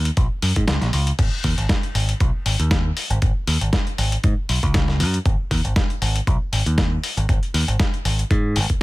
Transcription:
0.05 closed hi-hat
0.17 picked electric bass A#1, kick, closed hi-hat
0.42 picked electric bass F#2, open hi-hat
0.56 picked electric bass G#2, kick, closed hi-hat
0.68 picked electric bass C#2, snare, closed hi-hat
0.81 picked electric bass A#1, snare, closed hi-hat
0.93 picked electric bass C#2, open hi-hat
1.07 closed hi-hat
1.19 picked electric bass G#1, kick, closed hi-hat, crash
1.44 picked electric bass D#2, kick, open hi-hat
1.58 picked electric bass G#1, closed hi-hat
1.69 kick, snare, closed hi-hat
1.83 closed hi-hat
1.95 picked electric bass G#1, open hi-hat
2.09 closed hi-hat
2.20 picked electric bass B1, kick, closed hi-hat
2.46 picked electric bass G#1, open hi-hat
2.60 picked electric bass D#2, closed hi-hat
2.71 kick, snare, closed hi-hat
2.97 open hi-hat
3.10 picked electric bass G#1, closed hi-hat
3.22 picked electric bass G#1, kick, closed hi-hat
3.47 picked electric bass D#2, open hi-hat
3.61 picked electric bass G#1, closed hi-hat
3.73 kick, snare, closed hi-hat
3.87 closed hi-hat
3.98 picked electric bass G#1, open hi-hat
4.12 closed hi-hat
4.24 picked electric bass G#2, kick, closed hi-hat
4.49 picked electric bass B1, open hi-hat
4.63 picked electric bass C#2, kick, closed hi-hat
4.74 kick, snare, closed hi-hat
4.88 snare
5.00 picked electric bass F#2, open hi-hat
5.14 closed hi-hat
5.25 picked electric bass G#1, kick, closed hi-hat
5.51 picked electric bass D#2, kick, open hi-hat
5.64 picked electric bass G#1, closed hi-hat
5.76 kick, snare, closed hi-hat
5.90 closed hi-hat
6.02 picked electric bass G#1, open hi-hat
6.16 closed hi-hat
6.27 picked electric bass B1, kick, closed hi-hat
6.53 picked electric bass G#1, open hi-hat
6.66 picked electric bass D#2, closed hi-hat
6.78 kick, snare, closed hi-hat
7.04 open hi-hat
7.17 picked electric bass G#1, closed hi-hat
7.29 picked electric bass G#1, kick, closed hi-hat
7.43 closed hi-hat
7.54 picked electric bass D#2, open hi-hat
7.68 picked electric bass G#1, closed hi-hat
7.80 kick, snare, closed hi-hat
7.94 closed hi-hat
8.05 picked electric bass G#1, open hi-hat
8.19 closed hi-hat
8.31 picked electric bass G#2, kick, closed hi-hat
8.56 picked electric bass G#1, open hi-hat
8.70 kick, closed hi-hat

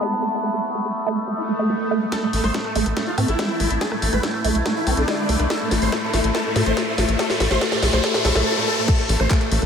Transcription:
Already playing: synth drone A3 B3
0.01 synth arpeggio sound G#3
0.22 synth arpeggio sound A3
0.43 synth arpeggio sound A3
0.54 synth arpeggio sound A3
0.75 synth arpeggio sound A3
0.85 synth arpeggio sound A3
1.06 synth arpeggio sound A3
1.28 synth arpeggio sound A3, swell
1.38 synth arpeggio sound E4
1.49 synth arpeggio sound A3
1.59 synth arpeggio sound A3
1.70 synth arpeggio sound A3
1.91 synth arpeggio sound A3
2.02 synth arpeggio sound G#3
2.12 synth arpeggio sound A3, synth drone A3 E4, supersaw synth A4, kick, cross-stick, snare, closed hi-hat, riser
2.23 synth arpeggio sound A3, supersaw synth A3
2.33 analog synth bass A1, supersaw synth A3, open hi-hat
2.44 analog synth bass A1, synth arpeggio sound A3, supersaw synth C5, cross-stick, open hi-hat
2.54 synth arpeggio sound A3, supersaw synth A3, kick, snare, closed hi-hat
2.65 supersaw synth A3, cross-stick
2.75 analog synth bass A1, synth arpeggio sound A3, supersaw synth A3, open hi-hat
2.86 analog synth bass A1, cross-stick, closed hi-hat
2.97 synth arpeggio sound A3, supersaw synth A3, kick, snare, closed hi-hat
3.07 synth arpeggio sound E4, supersaw synth F4
3.18 analog synth bass A2, supersaw synth A3, synth arpeggio sound C4, cross-stick, open hi-hat
3.28 analog synth bass A1, supersaw synth E4, synth arpeggio sound A4, closed hi-hat
3.39 synth arpeggio sound G#3, kick, cross-stick, snare, closed hi-hat
3.60 analog synth bass A1, synth arpeggio sound A3, cross-stick, open hi-hat
3.71 analog synth bass A1, closed hi-hat
3.81 synth arpeggio sound A3, supersaw synth G#4, kick, snare, closed hi-hat
3.92 synth arpeggio sound A3, supersaw synth A3, cross-stick
4.02 analog synth bass A1, supersaw synth A3, open hi-hat
4.13 analog synth bass A1, synth arpeggio sound A3, supersaw synth B4, cross-stick, closed hi-hat
4.23 synth arpeggio sound A3, supersaw synth A3, kick, snare, closed hi-hat
4.34 supersaw synth A3, cross-stick
4.44 analog synth bass B1, synth arpeggio sound A3, supersaw synth A3, open hi-hat
4.55 analog synth bass B1, closed hi-hat
4.66 synth arpeggio sound A3, supersaw synth A3, kick, cross-stick, snare, closed hi-hat
4.76 synth arpeggio sound E4, supersaw synth E4
4.87 analog synth bass B1, supersaw synth A3, synth arpeggio sound C4, cross-stick, open hi-hat
4.97 analog synth bass B1, supersaw synth D4, synth arpeggio sound A4, closed hi-hat
5.08 synth arpeggio sound G#3, kick, cross-stick, snare, closed hi-hat
5.29 analog synth bass C2, synth arpeggio sound A3, open hi-hat
5.40 analog synth bass C2, cross-stick, closed hi-hat
5.50 synth arpeggio sound A3, supersaw synth A4, kick, snare, closed hi-hat
5.61 synth arpeggio sound A3, supersaw synth A3
5.71 analog synth bass A1, supersaw synth A3, snare, open hi-hat
5.82 analog synth bass A1, synth arpeggio sound A3, supersaw synth C5, open hi-hat
5.92 supersaw synth A3, synth arpeggio sound A3, kick, snare, closed hi-hat
6.03 supersaw synth A3
6.14 analog synth bass A1, synth arpeggio sound A3, supersaw synth A3, snare, open hi-hat
6.24 analog synth bass A1, closed hi-hat
6.35 synth arpeggio sound A3, supersaw synth A4, kick, snare, closed hi-hat
6.45 synth arpeggio sound A3, supersaw synth A3
6.56 analog synth bass A2, supersaw synth A3, snare, open hi-hat
6.66 analog synth bass A1, synth arpeggio sound A3, supersaw synth C5, closed hi-hat
6.77 synth arpeggio sound A3, supersaw synth A3, kick, snare, closed hi-hat
6.87 supersaw synth A3
6.98 analog synth bass A1, synth arpeggio sound A3, supersaw synth A3, snare, open hi-hat
7.09 analog synth bass A1, closed hi-hat
7.19 synth arpeggio sound A3, supersaw synth A4, kick, snare, closed hi-hat
7.30 synth arpeggio sound A3, supersaw synth A3, snare
7.40 analog synth bass A1, supersaw synth A3, snare, open hi-hat
7.51 analog synth bass A1, synth arpeggio sound A3, supersaw synth C5, snare, closed hi-hat
7.61 synth arpeggio sound A3, supersaw synth A4, kick, snare, closed hi-hat
7.72 synth arpeggio sound A3, supersaw synth A3, snare, closed hi-hat
7.83 analog synth bass B1, supersaw synth A3, snare, open hi-hat
7.93 analog synth bass B1, synth arpeggio sound A3, supersaw synth C5, snare, closed hi-hat
8.04 synth arpeggio sound A3, supersaw synth A4, kick, snare, closed hi-hat
8.14 synth arpeggio sound A3, supersaw synth A3, snare
8.25 analog synth bass B1, synth arpeggio sound A3, supersaw synth A4, snare, open hi-hat
8.35 analog synth bass B1, synth arpeggio sound A3, supersaw synth A3, snare, closed hi-hat
8.46 supersaw synth A4
8.57 supersaw synth A3
8.67 supersaw synth A4
8.78 supersaw synth A3
8.88 synth arpeggio sound A3, synth drone A3 E4, supersaw synth A4, kick, cross-stick, closed hi-hat, crash
8.99 synth arpeggio sound A3, supersaw synth A3, closed hi-hat
9.09 analog synth bass A1, supersaw synth A3, open hi-hat
9.20 analog synth bass A1, synth arpeggio sound A3, supersaw synth C5, cross-stick, closed hi-hat
9.30 synth arpeggio sound A3, supersaw synth A3, kick, clap, closed hi-hat
9.41 supersaw synth A3, cross-stick, closed hi-hat
9.52 analog synth bass A1, synth arpeggio sound A3, supersaw synth A3, open hi-hat
9.62 analog synth bass A1, cross-stick, closed hi-hat

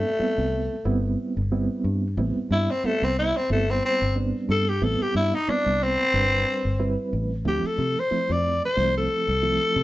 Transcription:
Already playing: tenor saxophone A3
0.19 reed electric piano G3 B3 C4 E4, muted fingered electric bass stroke
0.38 fingered electric bass C2
0.85 fingered electric bass G1, reed electric piano G3 B3 C4 E4
1.37 fingered electric bass G1
1.52 reed electric piano G3 B3 C4 E4
1.84 fingered electric bass G2
2.17 fingered electric bass A1, reed electric piano G3 B3 C4 E4
2.36 muted fingered electric bass stroke
2.50 fingered electric bass G2, tenor saxophone E4
2.71 tenor saxophone C4
2.84 reed electric piano G3 B3 C4 E4, tenor saxophone A3, muted fingered electric bass stroke
3.02 fingered electric bass C2, tenor saxophone C4
3.19 tenor saxophone E4
3.37 tenor saxophone C4
3.50 fingered electric bass G1, reed electric piano G3 B3 C4 E4, tenor saxophone A3
3.70 tenor saxophone C4
3.85 tenor saxophone C4
4.02 fingered electric bass G1
4.16 reed electric piano G3 B3 C4 D4
4.49 fingered electric bass G2, tenor saxophone A4
4.69 tenor saxophone G4
4.82 fingered electric bass A1, reed electric piano G3 B3 C4 E4, tenor saxophone A4
5.00 tenor saxophone G4, muted fingered electric bass stroke
5.15 fingered electric bass G2, tenor saxophone E4
5.35 tenor saxophone D#4
5.48 reed electric piano G3 B3 C4 E4, tenor saxophone D4, muted fingered electric bass stroke
5.66 fingered electric bass C2
5.83 tenor saxophone C4
6.14 fingered electric bass G1, reed electric piano G3 C4 D4 B4
6.65 fingered electric bass G1
6.80 reed electric piano G3 C4 E4 B4
7.13 fingered electric bass A1
7.45 fingered electric bass D2, reed electric piano F3 A3 C4 E4, tenor saxophone G4
7.64 tenor saxophone A4, muted fingered electric bass stroke
7.78 fingered electric bass C3
8.00 tenor saxophone C5
8.11 reed electric piano F3 A3 C4 E4, muted fingered electric bass stroke
8.30 fingered electric bass F2, tenor saxophone D5
8.65 tenor saxophone C5
8.77 fingered electric bass C2, reed electric piano F3 A3 C4 E4
8.97 tenor saxophone A4
9.28 fingered electric bass C2
9.43 reed electric piano F3 A3 C4 E4
9.76 fingered electric bass C3

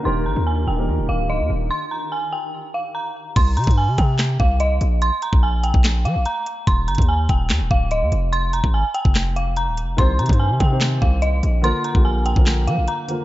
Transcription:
Already playing: ambient pad A#4
0.03 808-style bass D#1, grand piano D#3 A#3 G4 A#4, ambient pad D#3 D#4 G4, synth bell C6
0.26 808-style bass G1, synth bell A#5
0.36 808-style bass D#2
0.47 synth bell G#5
0.67 808-style bass D#1, synth bell G5
0.76 grand piano D#3 A#3 G4 A#4
0.88 808-style bass D#2
0.98 808-style bass D#1
1.09 808-style bass D1, synth bell F5
1.30 synth bell D#5
1.40 808-style bass D#2
1.50 808-style bass D#1
1.71 synth bell C6
1.91 synth bell A#5
2.12 synth bell G#5
2.33 synth bell G5
2.74 synth bell F5
2.95 synth bell A#5
3.36 808-style bass C2, synth bell C6, kick, closed hi-hat, crash
3.57 808-style bass C3, synth bell A#5, closed hi-hat
3.64 808-style bass G2, kick, closed hi-hat
3.71 closed hi-hat
3.78 synth bell G#5
3.88 808-style bass C3
3.98 808-style bass C3, synth bell G5, kick, closed hi-hat
4.19 snare, clap, closed hi-hat
4.40 808-style bass C2, synth bell F5, kick
4.60 synth bell D#5, closed hi-hat
4.81 808-style bass A#1, closed hi-hat
5.02 synth bell C6, closed hi-hat
5.22 synth bell A#5, closed hi-hat
5.33 808-style bass A#1, kick
5.43 synth bell G#5
5.64 synth bell G5, closed hi-hat
5.74 808-style bass A#1, kick
5.84 snare, clap, closed hi-hat
6.05 808-style bass F3, synth bell F5, closed hi-hat
6.16 808-style bass A#1
6.26 synth bell A#5, closed hi-hat
6.46 closed hi-hat
6.67 808-style bass D#1, synth bell C6, kick, closed hi-hat
6.88 808-style bass G1, synth bell A#5, closed hi-hat
6.95 808-style bass D#2, kick, closed hi-hat
7.02 closed hi-hat
7.09 synth bell G#5
7.29 808-style bass D#1, synth bell G5, kick, closed hi-hat
7.50 808-style bass D#2, snare, clap, closed hi-hat
7.60 808-style bass D#1
7.71 808-style bass D1, synth bell F5, kick
7.91 synth bell D#5, closed hi-hat
8.02 808-style bass D#2
8.12 808-style bass F1, closed hi-hat
8.33 synth bell C6, closed hi-hat
8.53 synth bell A#5, closed hi-hat
8.64 808-style bass G#1, kick
8.74 synth bell G#5
8.94 synth bell G5, closed hi-hat
9.05 808-style bass F1, kick
9.15 snare, clap, closed hi-hat
9.36 synth bell F5, closed hi-hat
9.56 synth bell A#5, closed hi-hat
9.67 808-style bass D#1
9.77 closed hi-hat
9.83 808-style bass F1
9.97 808-style bass C2, grand piano D#3 C4 G4 C5, synth bell C6, kick, closed hi-hat
10.19 808-style bass C3, synth bell A#5, closed hi-hat
10.26 808-style bass G2, kick, closed hi-hat
10.33 closed hi-hat
10.39 synth bell G#5
10.50 808-style bass C3
10.60 808-style bass C3, synth bell G5, kick, closed hi-hat
10.69 grand piano D#3 C4 G4 C5
10.81 snare, clap, closed hi-hat
11.02 808-style bass C2, synth bell F5, kick
11.22 synth bell D#5, closed hi-hat
11.43 808-style bass A#1, closed hi-hat
11.62 grand piano D3 A#3 F4 A#4, synth bell C6, closed hi-hat
11.84 synth bell A#5, closed hi-hat
11.93 808-style bass A#1, grand piano D3 A#3 F4 G4, kick
12.05 synth bell G#5
12.26 synth bell G5, closed hi-hat
12.35 808-style bass A#1, grand piano D3 A#3 F4 A#4, kick
12.46 snare, clap, closed hi-hat
12.67 808-style bass F3, synth bell F5, closed hi-hat
12.78 808-style bass A#1
12.88 synth bell A#5, closed hi-hat
13.07 grand piano D3 A#3 F4 A#4, closed hi-hat

